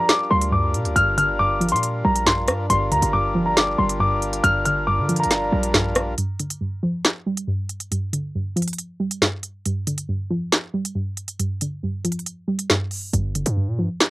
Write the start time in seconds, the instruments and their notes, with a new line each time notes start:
Already playing: synth pluck G2 D3 F3, harmonium G3 D4 F4 A#4
0.09 grand piano D6, snare, closed hi-hat
0.31 808-style bass D2, synth pluck G3, grand piano C6
0.41 closed hi-hat
0.52 synth pluck G2, grand piano D6
0.74 808-style bass A#2, closed hi-hat
0.85 808-style bass D2, closed hi-hat
0.96 808-style bass G1, synth pluck G2, grand piano F6, closed hi-hat
1.17 synth pluck D3, grand piano F6, closed hi-hat
1.39 synth pluck G2, grand piano D6
1.60 synth pluck F3, closed hi-hat
1.69 808-style bass A#2, grand piano C6, closed hi-hat
1.76 closed hi-hat
1.83 closed hi-hat
2.04 808-style bass A#1, synth pluck G3, grand piano A#5
2.15 closed hi-hat
2.26 synth pluck G2, grand piano C6, snare
2.48 808-style bass G2, cross-stick, closed hi-hat
2.70 808-style bass G1, synth pluck G2, harmonium G3 F4 A#4, grand piano C6, closed hi-hat
2.91 808-style bass D2, synth pluck D3, grand piano A#5, closed hi-hat
3.02 808-style bass G1, closed hi-hat
3.13 synth pluck G2, grand piano D6
3.35 synth pluck F3
3.46 grand piano A#5
3.57 grand piano D6, snare, closed hi-hat
3.78 808-style bass G1, synth pluck G3, grand piano C6
3.89 closed hi-hat
4.00 synth pluck G2, grand piano D6
4.22 closed hi-hat
4.33 closed hi-hat
4.44 808-style bass G1, synth pluck G2, grand piano F6, closed hi-hat
4.65 synth pluck D3, grand piano F6, closed hi-hat
4.87 synth pluck G2, grand piano D6
4.98 808-style bass D3
5.09 synth pluck F3, closed hi-hat
5.16 grand piano A#5, closed hi-hat
5.24 808-style bass G1, closed hi-hat
5.31 snare, closed hi-hat
5.52 808-style bass A#1, synth pluck G3
5.63 closed hi-hat
5.74 synth pluck G2, snare
5.95 cross-stick, closed hi-hat
6.18 synth pluck G2, closed hi-hat
6.39 synth pluck D3, closed hi-hat
6.50 closed hi-hat
6.61 synth pluck G2
6.83 synth pluck F3
7.05 snare, closed hi-hat
7.26 synth pluck G3
7.37 closed hi-hat
7.47 synth pluck G2
7.69 closed hi-hat
7.80 closed hi-hat
7.91 synth pluck G2, closed hi-hat
8.13 synth pluck D3, closed hi-hat
8.35 synth pluck G2
8.56 synth pluck F3, closed hi-hat
8.62 closed hi-hat
8.68 closed hi-hat
8.73 closed hi-hat
8.78 closed hi-hat
9.00 synth pluck G3
9.11 closed hi-hat
9.22 synth pluck G2, snare
9.43 closed hi-hat
9.66 synth pluck G2, closed hi-hat
9.87 synth pluck D3, closed hi-hat
9.98 closed hi-hat
10.09 synth pluck G2
10.30 synth pluck F3
10.52 snare, closed hi-hat
10.74 synth pluck G3
10.85 closed hi-hat
10.95 synth pluck G2
11.17 closed hi-hat
11.28 closed hi-hat
11.39 synth pluck G2, closed hi-hat
11.61 synth pluck D3, closed hi-hat
11.83 synth pluck G2
12.04 synth pluck F3, closed hi-hat
12.12 closed hi-hat
12.19 closed hi-hat
12.26 closed hi-hat
12.48 synth pluck G3
12.59 closed hi-hat
12.70 synth pluck G2, snare
12.91 open hi-hat
13.13 808-style bass G1, synth pluck G2, closed hi-hat
13.35 synth pluck D3, closed hi-hat
13.46 808-style bass G2, closed hi-hat
13.57 synth pluck G2
13.68 808-style bass A#2
13.79 808-style bass G2, synth pluck F3
14.00 snare, closed hi-hat